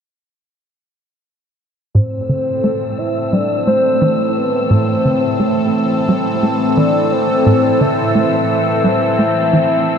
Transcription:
1.95 analog synth bass A2, analog synth pad A2, synth texture C4 E6, soft synth lead C5
2.29 analog synth bass D3, analog synth pad C4
2.42 analog synth pad E3 A4
2.64 analog synth bass A3
2.98 soft synth lead E5
3.33 analog synth bass G3, soft synth lead D5
3.67 analog synth bass A3, soft synth lead C5
4.02 analog synth bass E3
4.36 soft synth lead B4
4.70 analog synth bass A2, soft synth lead C5
5.05 analog synth bass D3
5.40 analog synth bass A3
6.08 analog synth bass G3
6.43 analog synth bass A3
6.77 analog synth bass E3, soft synth lead D5
7.12 soft synth lead C5
7.46 analog synth bass A2, soft synth lead C5
7.81 analog synth bass D3, soft synth lead E5
8.15 analog synth bass A3
8.84 analog synth bass G3, soft synth lead E5
9.19 analog synth bass A3
9.53 analog synth bass E3

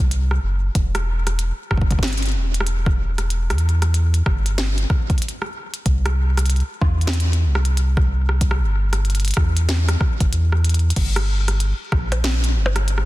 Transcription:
Already playing: sub bass C2
0.11 closed hi-hat
0.31 cross-stick
0.43 sub bass F#1
0.75 sub bass E1, kick, closed hi-hat
0.95 cross-stick, closed hi-hat
1.27 cross-stick, closed hi-hat
1.39 closed hi-hat
1.71 sub bass G1, kick, cross-stick
1.77 kick
1.81 kick
1.91 kick, closed hi-hat
1.99 kick
2.03 snare, closed hi-hat
2.08 closed hi-hat
2.13 closed hi-hat
2.18 closed hi-hat
2.23 closed hi-hat
2.26 closed hi-hat
2.29 closed hi-hat
2.32 sub bass E1, closed hi-hat
2.54 closed hi-hat
2.60 cross-stick
2.67 closed hi-hat
2.86 kick, cross-stick
3.18 cross-stick, closed hi-hat
3.30 closed hi-hat
3.50 sub bass E2, cross-stick, closed hi-hat
3.58 closed hi-hat
3.69 closed hi-hat
3.82 cross-stick, closed hi-hat
3.94 closed hi-hat
4.14 closed hi-hat
4.26 sub bass G1, kick, cross-stick
4.46 closed hi-hat
4.58 snare, closed hi-hat
4.78 closed hi-hat
4.90 kick, cross-stick
5.10 kick, closed hi-hat
5.18 closed hi-hat
5.22 closed hi-hat
5.29 closed hi-hat
5.42 cross-stick
5.74 closed hi-hat
5.86 sub bass C2, kick, closed hi-hat
6.06 cross-stick, closed hi-hat
6.37 cross-stick, closed hi-hat
6.46 closed hi-hat
6.50 closed hi-hat
6.56 closed hi-hat
6.60 closed hi-hat
6.81 sub bass E2, kick, cross-stick
7.01 closed hi-hat
7.07 snare, closed hi-hat
7.13 closed hi-hat
7.20 closed hi-hat
7.33 closed hi-hat
7.45 sub bass C2
7.55 cross-stick
7.65 closed hi-hat
7.77 closed hi-hat
7.97 kick, cross-stick
8.29 cross-stick
8.41 kick, closed hi-hat
8.51 cross-stick
8.61 sub bass G1
8.93 cross-stick, closed hi-hat
9.05 closed hi-hat
9.10 closed hi-hat
9.15 closed hi-hat
9.20 closed hi-hat
9.25 closed hi-hat
9.28 closed hi-hat
9.31 closed hi-hat
9.34 sub bass E2, kick, cross-stick, closed hi-hat
9.57 closed hi-hat
9.69 snare, closed hi-hat
9.89 cross-stick, closed hi-hat
10.01 kick, cross-stick
10.20 sub bass G1, kick, closed hi-hat
10.33 sub bass E2, closed hi-hat
10.52 cross-stick
10.65 closed hi-hat
10.69 closed hi-hat
10.74 closed hi-hat
10.79 closed hi-hat
10.90 closed hi-hat
10.96 sub bass G1, kick, closed hi-hat, crash
11.16 cross-stick, closed hi-hat
11.48 cross-stick, closed hi-hat
11.60 closed hi-hat
11.92 sub bass A#1, kick, cross-stick
12.12 closed hi-hat, percussion blips
12.24 snare, closed hi-hat
12.44 closed hi-hat
12.56 sub bass G1
12.66 percussion blips
12.76 cross-stick, closed hi-hat
12.88 closed hi-hat
12.98 cross-stick

